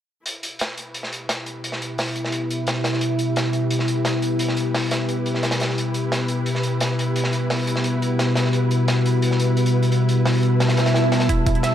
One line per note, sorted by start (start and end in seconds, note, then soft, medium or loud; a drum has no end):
0.26 11.75 B3 medium
0.26 11.75 E4 medium
0.26 11.75 G4 medium
0.26 5.75 E5 medium
0.26 closed hi-hat medium
0.43 closed hi-hat medium
0.56 11.75 B4 medium
0.56 closed hi-hat medium
0.61 snare loud
0.77 closed hi-hat medium
0.94 closed hi-hat medium
0.98 10.65 G4 medium
1.03 snare soft
1.13 closed hi-hat medium
1.29 snare loud
1.29 closed hi-hat medium
1.46 closed hi-hat medium
1.64 closed hi-hat medium
1.72 snare medium
1.82 closed hi-hat medium
1.98 snare loud
1.98 open hi-hat medium
2.16 closed hi-hat medium
2.25 snare medium
2.32 closed hi-hat medium
2.50 closed hi-hat medium
2.67 snare loud
2.67 closed hi-hat medium
2.84 snare medium
2.84 closed hi-hat medium
2.93 snare soft
3.01 closed hi-hat medium
3.19 closed hi-hat medium
3.36 snare loud
3.36 closed hi-hat medium
3.53 closed hi-hat medium
3.71 closed hi-hat medium
3.79 snare soft
3.88 closed hi-hat medium
4.05 snare loud
4.05 closed hi-hat medium
4.22 closed hi-hat medium
4.39 closed hi-hat medium
4.48 snare medium
4.57 closed hi-hat medium
4.74 snare loud
4.74 open hi-hat medium
4.91 snare loud
4.91 closed hi-hat medium
5.09 closed hi-hat medium
5.26 closed hi-hat medium
5.34 snare soft
5.43 snare medium
5.43 closed hi-hat medium
5.51 snare loud
5.51 closed hi-hat medium
5.60 snare medium
5.60 closed hi-hat medium
5.69 snare medium
5.77 11.27 F#5 medium
5.77 closed hi-hat medium
5.94 closed hi-hat medium
6.12 snare loud
6.12 closed hi-hat medium
6.28 closed hi-hat medium
6.46 closed hi-hat medium
6.55 snare soft
6.63 closed hi-hat medium
6.80 snare loud
6.80 closed hi-hat medium
6.99 closed hi-hat medium
7.16 closed hi-hat medium
7.24 snare soft
7.33 closed hi-hat medium
7.50 snare loud
7.50 open hi-hat medium
7.67 closed hi-hat medium
7.76 snare medium
7.84 closed hi-hat medium
8.02 closed hi-hat medium
8.19 snare loud
8.19 closed hi-hat medium
8.35 snare loud
8.35 closed hi-hat medium
8.45 snare soft
8.53 closed hi-hat medium
8.71 closed hi-hat medium
8.88 snare loud
8.88 closed hi-hat medium
9.06 closed hi-hat medium
9.22 closed hi-hat medium
9.31 snare soft
9.40 closed hi-hat medium
9.57 closed hi-hat medium
9.66 closed hi-hat medium
9.83 closed hi-hat medium
9.92 closed hi-hat medium
10.09 closed hi-hat medium
10.26 snare loud
10.26 open hi-hat medium
10.43 closed hi-hat medium
10.55 11.75 A5 medium
10.60 snare loud
10.60 closed hi-hat medium
10.60 swell medium
10.68 snare loud
10.68 closed hi-hat medium
10.77 snare loud
10.77 closed hi-hat medium
10.86 snare loud
10.86 closed hi-hat medium
10.94 snare loud
10.94 closed hi-hat medium
11.12 snare loud
11.12 closed hi-hat medium
11.20 snare loud
11.20 closed hi-hat medium
11.29 11.42 E4 loud
11.29 11.75 D5 medium
11.29 kick loud
11.29 closed hi-hat medium
11.46 11.60 E4 medium
11.46 kick loud
11.46 closed hi-hat medium
11.55 closed hi-hat soft
11.63 11.69 E5 medium
11.63 snare loud
11.63 closed hi-hat medium